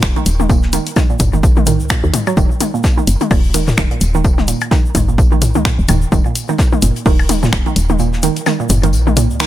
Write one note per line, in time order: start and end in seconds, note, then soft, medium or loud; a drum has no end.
0.02 0.12 D#1 medium
0.02 finger snap loud
0.02 kick loud
0.02 snare loud
0.02 tambourine medium
0.02 shaker medium
0.16 0.21 D#3 loud
0.16 closed hi-hat soft
0.16 high tom soft
0.16 shaker soft
0.26 0.80 D#1 loud
0.26 closed hi-hat loud
0.26 tambourine medium
0.26 shaker medium
0.40 0.45 D#3 medium
0.40 high tom medium
0.40 shaker soft
0.50 0.56 A#2 medium
0.50 kick loud
0.50 tambourine medium
0.50 shaker medium
0.62 snare soft
0.62 shaker soft
0.73 0.80 D#3 loud
0.73 closed hi-hat loud
0.73 high tom soft
0.73 tambourine medium
0.73 shaker loud
0.86 closed hi-hat soft
0.86 shaker soft
0.96 1.03 D#3 medium
0.96 kick loud
0.96 snare loud
0.96 high tom medium
0.96 tambourine loud
0.96 percussion blips medium
0.96 shaker medium
1.10 1.15 A#2 medium
1.10 shaker soft
1.19 1.45 F#1 medium
1.19 kick medium
1.19 closed hi-hat loud
1.19 mid tom medium
1.19 tambourine medium
1.19 shaker medium
1.33 1.38 D#3 loud
1.33 high tom soft
1.33 shaker soft
1.43 1.82 A#1 loud
1.43 kick loud
1.43 tambourine medium
1.43 shaker medium
1.57 1.62 D#3 medium
1.57 high tom medium
1.57 shaker soft
1.66 1.77 D#3 loud
1.66 closed hi-hat loud
1.66 mid tom medium
1.66 tambourine medium
1.66 shaker medium
1.80 1.95 C#2 medium
1.80 shaker soft
1.89 1.97 A#2 medium
1.89 finger snap loud
1.89 kick loud
1.89 snare loud
1.89 high tom soft
1.89 tambourine medium
1.89 shaker medium
2.04 2.10 D#2 loud
2.04 2.09 D#3 medium
2.04 shaker soft
2.14 closed hi-hat loud
2.14 mid tom medium
2.14 high tom medium
2.14 tambourine medium
2.14 shaker medium
2.27 2.30 F#3 loud
2.27 percussion blips medium
2.27 shaker soft
2.37 2.46 D#1 loud
2.37 2.44 D#3 loud
2.37 kick loud
2.37 high tom soft
2.37 tambourine medium
2.37 shaker medium
2.51 shaker soft
2.60 2.67 D#3 medium
2.60 closed hi-hat loud
2.60 high tom medium
2.60 tambourine medium
2.60 shaker loud
2.74 2.79 A#2 medium
2.74 shaker soft
2.84 kick loud
2.84 snare loud
2.84 tambourine loud
2.84 shaker medium
2.98 3.02 D#3 loud
2.98 high tom soft
2.98 shaker soft
3.07 3.17 F#1 medium
3.07 closed hi-hat medium
3.07 tambourine medium
3.07 shaker medium
3.20 3.26 D#3 medium
3.20 closed hi-hat soft
3.20 high tom medium
3.20 shaker soft
3.31 3.73 D#1 medium
3.31 3.37 A#2 medium
3.31 kick loud
3.31 open hi-hat medium
3.31 percussion blips medium
3.31 shaker medium
3.44 shaker soft
3.54 3.61 D#3 loud
3.54 closed hi-hat loud
3.54 high tom soft
3.54 tambourine medium
3.54 shaker loud
3.67 snare medium
3.67 mid tom medium
3.67 shaker soft
3.77 3.87 D#1 medium
3.77 3.84 D#3 medium
3.77 finger snap loud
3.77 kick loud
3.77 snare loud
3.77 high tom medium
3.77 tambourine medium
3.77 shaker medium
3.90 3.96 A#2 medium
3.90 closed hi-hat soft
3.90 shaker soft
4.01 4.55 D#1 loud
4.01 closed hi-hat loud
4.01 tambourine medium
4.01 shaker medium
4.14 4.20 D#3 loud
4.14 high tom soft
4.14 shaker soft
4.24 kick loud
4.24 tambourine medium
4.24 shaker soft
4.38 4.43 D#3 medium
4.38 snare medium
4.38 high tom medium
4.38 shaker soft
4.48 4.55 A#2 medium
4.48 closed hi-hat medium
4.48 tambourine medium
4.48 shaker loud
4.60 closed hi-hat soft
4.60 percussion blips medium
4.60 shaker soft
4.71 4.78 D#3 loud
4.71 kick loud
4.71 snare loud
4.71 high tom soft
4.71 tambourine medium
4.71 shaker soft
4.85 shaker soft
4.95 5.20 F#1 medium
4.95 5.02 D#3 medium
4.95 kick medium
4.95 closed hi-hat medium
4.95 mid tom medium
4.95 high tom medium
4.95 tambourine medium
4.95 shaker medium
5.08 5.13 A#2 medium
5.08 shaker soft
5.18 5.57 A#1 loud
5.18 kick loud
5.18 tambourine medium
5.18 shaker medium
5.32 5.37 D#3 loud
5.32 high tom soft
5.32 shaker soft
5.42 closed hi-hat medium
5.42 mid tom medium
5.42 tambourine medium
5.42 shaker medium
5.55 5.70 C#2 medium
5.55 5.60 D#3 medium
5.55 high tom medium
5.55 shaker soft
5.65 5.72 A#2 medium
5.65 finger snap loud
5.65 kick loud
5.65 snare loud
5.65 tambourine medium
5.65 shaker soft
5.79 5.85 D#1 loud
5.79 shaker soft
5.88 6.06 D#1 loud
5.88 5.95 D#3 loud
5.88 closed hi-hat medium
5.88 mid tom medium
5.88 high tom soft
5.88 tambourine medium
5.88 percussion blips medium
5.88 shaker loud
6.02 shaker soft
6.12 6.21 D#1 loud
6.12 6.19 D#3 medium
6.12 kick loud
6.12 high tom medium
6.12 tambourine medium
6.12 shaker medium
6.25 6.31 A#2 medium
6.25 shaker soft
6.35 closed hi-hat medium
6.35 tambourine medium
6.35 shaker loud
6.48 6.54 D#3 loud
6.48 high tom soft
6.48 shaker soft
6.58 kick loud
6.58 snare loud
6.58 tambourine medium
6.58 shaker medium
6.72 6.77 D#3 medium
6.72 high tom medium
6.72 shaker soft
6.82 6.92 F#1 medium
6.82 6.89 A#2 medium
6.82 closed hi-hat medium
6.82 tambourine medium
6.82 shaker loud
6.96 closed hi-hat soft
6.96 shaker soft
7.06 7.48 D#1 medium
7.06 7.13 D#3 loud
7.06 kick loud
7.06 open hi-hat medium
7.06 high tom soft
7.06 shaker medium
7.19 percussion blips medium
7.19 shaker soft
7.29 7.36 D#3 medium
7.29 closed hi-hat medium
7.29 high tom medium
7.29 tambourine medium
7.29 shaker medium
7.43 7.48 A#2 medium
7.43 snare medium
7.43 mid tom medium
7.43 shaker soft
7.53 7.62 D#1 medium
7.53 finger snap loud
7.53 kick loud
7.53 snare loud
7.53 tambourine medium
7.53 shaker medium
7.66 7.71 D#3 loud
7.66 closed hi-hat soft
7.66 high tom soft
7.66 shaker soft
7.76 8.30 D#1 loud
7.76 closed hi-hat medium
7.76 tambourine medium
7.76 shaker medium
7.89 7.95 D#3 medium
7.89 high tom medium
7.89 shaker soft
7.99 8.06 A#2 medium
7.99 tambourine medium
7.99 shaker medium
8.13 snare soft
8.13 shaker soft
8.23 8.30 D#3 loud
8.23 closed hi-hat medium
8.23 high tom soft
8.23 tambourine medium
8.23 shaker medium
8.36 closed hi-hat soft
8.36 shaker soft
8.46 8.53 D#3 medium
8.46 snare loud
8.46 high tom medium
8.46 tambourine medium
8.46 percussion blips medium
8.46 shaker soft
8.60 8.65 A#2 medium
8.60 shaker soft
8.69 8.95 F#1 medium
8.69 closed hi-hat medium
8.69 mid tom medium
8.69 tambourine medium
8.69 shaker loud
8.83 8.88 D#3 loud
8.83 closed hi-hat soft
8.83 high tom soft
8.83 shaker soft
8.93 9.32 A#1 loud
8.93 tambourine medium
8.93 shaker medium
9.07 9.12 D#3 medium
9.07 high tom medium
9.07 shaker soft
9.17 9.23 A#2 medium
9.17 closed hi-hat medium
9.17 mid tom medium
9.17 tambourine medium
9.17 shaker medium
9.30 9.45 C#2 medium
9.30 shaker soft
9.39 9.47 D#3 loud
9.39 finger snap loud
9.39 snare loud
9.39 high tom soft
9.39 tambourine loud
9.39 shaker medium